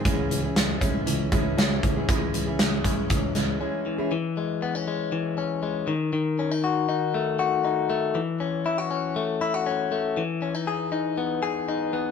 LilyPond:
<<
  \new Staff \with { instrumentName = "Steel-string acoustic guitar" } { \time 4/4 \key cis \minor \tempo 4 = 119 <cis gis cis' e' gis'>8. <cis' e' gis'>8. <gis cis' e' gis'>4 <gis cis' e' gis'>8 <gis cis' e' gis'>8. <cis' e' gis'>16 | <cis gis cis' e' gis'>8. <cis' e' gis'>8. <gis cis' e' gis'>4 <gis cis' e' gis'>8 <gis cis' e' gis'>8. <cis' e' gis'>16 | r1 | r1 |
r1 | r1 | }
  \new Staff \with { instrumentName = "Clean electric guitar" } { \time 4/4 \key cis \minor e8 e8 gis8 cis'8 e8 gis8 cis'8 e8 | e8 e8 gis8 cis'8 e8 gis8 cis'8 e8 | e8 gis8 b16 cis'16 gis8 e8 cis'8 gis8 dis8 | dis8 cis'16 dis'16 fis'8 dis'8 a8 fis'8 dis'8 a8 |
e8 cis'8 e'16 fis'16 cis'8 a8 e'16 fis'16 cis'8 a8 | e8 cis'16 dis'16 gis'8 dis'8 b8 gis'8 dis'8 b8 | }
  \new Staff \with { instrumentName = "Tine electric piano" } { \clef bass \time 4/4 \key cis \minor cis,8 cis,8 cis,8 bis,,8 cis,8 cis,8 cis,8 cis,8 | cis,8 cis,8 cis,8 bis,,8 cis,8 cis,8 r4 | r1 | r1 |
r1 | r1 | }
  \new DrumStaff \with { instrumentName = "Drums" } \drummode { \time 4/4 <hh bd>8 hh8 <hh sn>8 <hh bd>8 hh8 <hh bd>8 <hh sn>8 <hh bd>8 | <hh bd>8 hh8 <hh sn>8 <hh bd>8 <hh bd>8 <hh sn>8 r4 | r4 r4 r4 r4 | r4 r4 r4 r4 |
r4 r4 r4 r4 | r4 r4 r4 r4 | }
>>